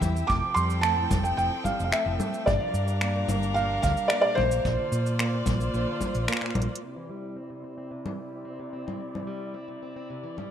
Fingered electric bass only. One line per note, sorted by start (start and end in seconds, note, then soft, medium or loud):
0.01 0.22 E2 medium
0.30 0.40 F1 medium
0.56 1.05 F2 medium
1.11 1.31 F1 medium
1.38 1.48 F1 medium
1.80 1.90 F1 medium
2.06 2.16 F1 medium
2.47 2.57 G1 loud
2.74 3.23 G2 medium
3.28 3.78 G1 medium
3.83 3.94 D2 medium
4.37 4.58 A#1 medium
4.65 4.75 A#1 medium
4.92 5.41 A#2 medium
5.47 5.68 A#1 medium
5.74 5.84 A#1 medium
6.15 6.25 A#1 medium
6.55 6.66 A#1 loud